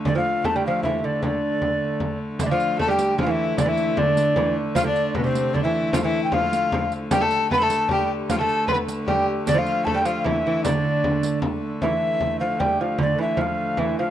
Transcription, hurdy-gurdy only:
X:1
M:3/4
L:1/8
Q:1/4=153
K:Dm
V:1 name="Hurdy-gurdy" clef=bass
[D,A,]6- | [D,A,]6 | [D,A,]6- | [D,A,]6- |
[D,A,]6- | [D,A,]6 | [D,A,]6- | [D,A,]6- |
[D,A,]6- | [D,A,]6 | [D,A,]6- | [D,A,]6 |]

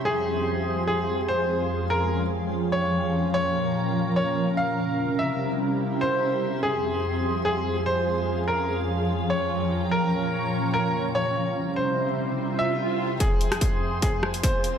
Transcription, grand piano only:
X:1
M:4/4
L:1/8
Q:"Swing 16ths" 1/4=146
K:Fm
V:1 name="Grand piano"
A4 A z c2- | c B z3 d3 | d4 d z f2- | f =e z3 c3 |
A4 A z c2- | c B z3 d3 | B4 B z d2- | d c z3 =e3 |
A4 A z c2 |]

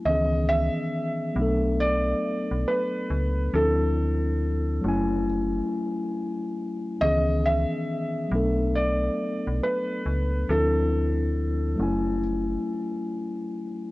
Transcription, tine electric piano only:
X:1
M:4/4
L:1/8
Q:"Swing 16ths" 1/4=69
K:Bdor
V:1 name="Tine electric piano"
[^D,E,B,CG]3 [F,A,B,=DA]4- [F,A,B,DA] | [=F,=CDEA]3 [^F,A,^CEg]4- [F,A,CEg] | [^D,E,B,CG]3 [F,A,B,=DA]4- [F,A,B,DA] | [=F,=CDEA]3 [^F,A,^CEg]4- [F,A,CEg] |]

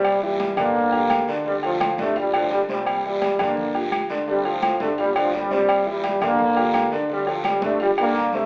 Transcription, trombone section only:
X:1
M:4/4
L:1/16
Q:1/4=170
K:Gdor
V:1 name="Trombone section" clef=bass
[B,,G,]2 [B,,G,]4 [D,B,]8 z2 | [C,G,]2 [A,,F,]4 [C,A,]2 [B,,G,]2 [A,,F,]2 [B,,G,]2 [B,,G,]2- | [B,,G,]2 [B,,G,]4 [D,B,]4- [D,B,] z4 z | [C,G,]2 [A,,F,]4 [C,A,]2 [B,,G,]2 [A,,F,]2 [B,,G,]2 [B,,G,]2- |
[B,,G,]2 [B,,G,]4 [D,B,]8 z2 | [C,G,]2 [A,,F,]2 [C,G,]2 [C,A,]2 [B,,G,]2 [D,B,]4 [C,A,]2 |]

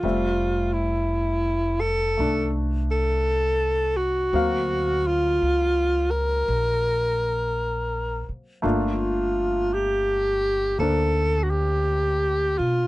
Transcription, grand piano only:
X:1
M:4/4
L:1/8
Q:"Swing" 1/4=56
K:F
V:1 name="Grand piano"
[G,A,Ce]4 [A,D]4 | [^F,^A,C^e]8 | [A,B,DF]4 [B,Dc]4 |]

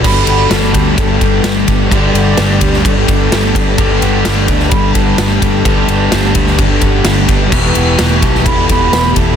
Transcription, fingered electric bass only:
X:1
M:4/4
L:1/8
Q:1/4=128
K:G
V:1 name="Fingered electric bass" clef=bass
G,,, G,,, G,,, D,, G,,, G,,, z G,,, | G,,, G,,, G,,, D,, G,,, G,,, G,,, G,,, | G,,, G,,, G,,, D,, G,,, G,,, G,,, G,,, | G,,, G,,, G,,, D,, G,,, G,,, G,,, G,,, |
E,,, E,,, E,,, B,,, E,,, E,,, E,,, E,,, |]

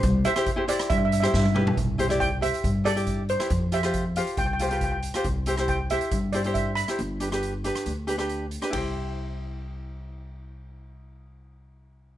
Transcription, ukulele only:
X:1
M:4/4
L:1/16
Q:1/4=138
K:C
V:1 name="Ukulele"
z2 [EGc] [EGc] z [EGc] [EGc]3 z2 [EGc]2 z [EGB]2 | z2 [EGc] [EGd]2 z [EGc]2 z2 [EGA] [EGd]2 z2 [EGB] | z2 [FGc] [FGc]2 z [FGc]2 z2 [FGc] [FGB]2 z2 [FGc] | z2 [EGc] [EGc]2 z [EGc]2 z2 [EGc] [EGc]2 z2 [EGc] |
z2 [DGB] [DGB]2 z [DGB]2 z2 [DGB] [DGB]2 z2 [DGB] | [EGc]16- | [EGc]16 |]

